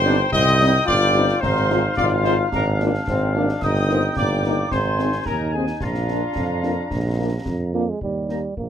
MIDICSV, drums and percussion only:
0, 0, Header, 1, 2, 480
1, 0, Start_track
1, 0, Key_signature, -3, "major"
1, 0, Tempo, 549451
1, 291, Time_signature, 2, 2, 24, 8
1, 7593, End_track
2, 0, Start_track
2, 0, Title_t, "Drums"
2, 40, Note_on_c, 9, 38, 55
2, 128, Note_off_c, 9, 38, 0
2, 282, Note_on_c, 9, 35, 95
2, 282, Note_on_c, 9, 38, 81
2, 370, Note_off_c, 9, 35, 0
2, 370, Note_off_c, 9, 38, 0
2, 523, Note_on_c, 9, 38, 57
2, 610, Note_off_c, 9, 38, 0
2, 645, Note_on_c, 9, 38, 54
2, 733, Note_off_c, 9, 38, 0
2, 768, Note_on_c, 9, 35, 78
2, 768, Note_on_c, 9, 38, 74
2, 856, Note_off_c, 9, 35, 0
2, 856, Note_off_c, 9, 38, 0
2, 1125, Note_on_c, 9, 38, 57
2, 1212, Note_off_c, 9, 38, 0
2, 1247, Note_on_c, 9, 35, 89
2, 1247, Note_on_c, 9, 38, 78
2, 1334, Note_off_c, 9, 35, 0
2, 1334, Note_off_c, 9, 38, 0
2, 1367, Note_on_c, 9, 38, 56
2, 1454, Note_off_c, 9, 38, 0
2, 1484, Note_on_c, 9, 38, 57
2, 1572, Note_off_c, 9, 38, 0
2, 1724, Note_on_c, 9, 35, 86
2, 1724, Note_on_c, 9, 38, 84
2, 1812, Note_off_c, 9, 35, 0
2, 1812, Note_off_c, 9, 38, 0
2, 1962, Note_on_c, 9, 38, 51
2, 2049, Note_off_c, 9, 38, 0
2, 2206, Note_on_c, 9, 35, 85
2, 2206, Note_on_c, 9, 38, 85
2, 2293, Note_off_c, 9, 35, 0
2, 2293, Note_off_c, 9, 38, 0
2, 2446, Note_on_c, 9, 38, 56
2, 2533, Note_off_c, 9, 38, 0
2, 2570, Note_on_c, 9, 38, 51
2, 2657, Note_off_c, 9, 38, 0
2, 2687, Note_on_c, 9, 35, 83
2, 2687, Note_on_c, 9, 38, 79
2, 2774, Note_off_c, 9, 35, 0
2, 2774, Note_off_c, 9, 38, 0
2, 3047, Note_on_c, 9, 38, 55
2, 3134, Note_off_c, 9, 38, 0
2, 3162, Note_on_c, 9, 35, 85
2, 3162, Note_on_c, 9, 38, 75
2, 3162, Note_on_c, 9, 49, 33
2, 3250, Note_off_c, 9, 35, 0
2, 3250, Note_off_c, 9, 38, 0
2, 3250, Note_off_c, 9, 49, 0
2, 3282, Note_on_c, 9, 38, 53
2, 3369, Note_off_c, 9, 38, 0
2, 3399, Note_on_c, 9, 38, 48
2, 3487, Note_off_c, 9, 38, 0
2, 3638, Note_on_c, 9, 35, 84
2, 3638, Note_on_c, 9, 38, 80
2, 3725, Note_off_c, 9, 35, 0
2, 3725, Note_off_c, 9, 38, 0
2, 3879, Note_on_c, 9, 38, 55
2, 3966, Note_off_c, 9, 38, 0
2, 4119, Note_on_c, 9, 35, 82
2, 4119, Note_on_c, 9, 38, 80
2, 4206, Note_off_c, 9, 35, 0
2, 4206, Note_off_c, 9, 38, 0
2, 4358, Note_on_c, 9, 38, 51
2, 4446, Note_off_c, 9, 38, 0
2, 4475, Note_on_c, 9, 38, 48
2, 4563, Note_off_c, 9, 38, 0
2, 4592, Note_on_c, 9, 35, 78
2, 4592, Note_on_c, 9, 38, 77
2, 4679, Note_off_c, 9, 35, 0
2, 4679, Note_off_c, 9, 38, 0
2, 4954, Note_on_c, 9, 38, 51
2, 5042, Note_off_c, 9, 38, 0
2, 5072, Note_on_c, 9, 35, 79
2, 5072, Note_on_c, 9, 38, 71
2, 5159, Note_off_c, 9, 35, 0
2, 5159, Note_off_c, 9, 38, 0
2, 5193, Note_on_c, 9, 38, 51
2, 5281, Note_off_c, 9, 38, 0
2, 5314, Note_on_c, 9, 38, 49
2, 5401, Note_off_c, 9, 38, 0
2, 5554, Note_on_c, 9, 35, 76
2, 5554, Note_on_c, 9, 38, 70
2, 5641, Note_off_c, 9, 35, 0
2, 5641, Note_off_c, 9, 38, 0
2, 5795, Note_on_c, 9, 38, 51
2, 5883, Note_off_c, 9, 38, 0
2, 6034, Note_on_c, 9, 35, 80
2, 6034, Note_on_c, 9, 38, 61
2, 6122, Note_off_c, 9, 35, 0
2, 6122, Note_off_c, 9, 38, 0
2, 6514, Note_on_c, 9, 35, 72
2, 6514, Note_on_c, 9, 38, 75
2, 6601, Note_off_c, 9, 35, 0
2, 6601, Note_off_c, 9, 38, 0
2, 6999, Note_on_c, 9, 35, 57
2, 7087, Note_off_c, 9, 35, 0
2, 7244, Note_on_c, 9, 38, 29
2, 7331, Note_off_c, 9, 38, 0
2, 7487, Note_on_c, 9, 35, 57
2, 7574, Note_off_c, 9, 35, 0
2, 7593, End_track
0, 0, End_of_file